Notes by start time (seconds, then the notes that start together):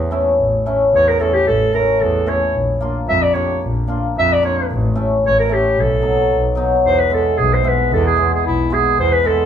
Already playing: E2
0.11 A3 C#4 E4
0.39 A1
0.66 A3 C#4 E4
0.93 E2 C#5
1.08 A#4
1.20 A3 C#4 E4 A4
1.34 G4
1.46 A1 A4
1.73 A3 C#4 E4 A#4
2.01 E2 A4
2.26 A3 C#4 E4 C#5
2.55 A#1
2.81 A#3 D4 F4
3.08 F2 E5
3.22 D5
3.33 A#3 D4 G4 C#5
3.62 A#1
3.87 A#3 D4 F4
4.16 F2 E5
4.32 D5
4.42 A#3 D4 F4 C#5
4.70 A1
4.95 A3 C#4 E4
5.24 A1 C#5
5.40 A#4
5.49 A3 C#4 E4
5.53 G4
5.78 B1 A4
6.02 F#3 B3 D#4
6.32 B1
6.55 F#3 B3 D#4
6.85 E2 C5
6.99 B4
7.10 G#3 B3 E4 A4
7.38 B1 G#4
7.53 C5
7.63 G#3 B3 E4
7.68 B4
7.92 E2 A4
8.06 G#4
8.16 G#3 B3 E4
8.34 G#4
8.46 B1 E4
8.70 G#3 B3 E4 G#4
8.99 E2 C5
9.12 B4
9.24 G#3 B3 E4 A4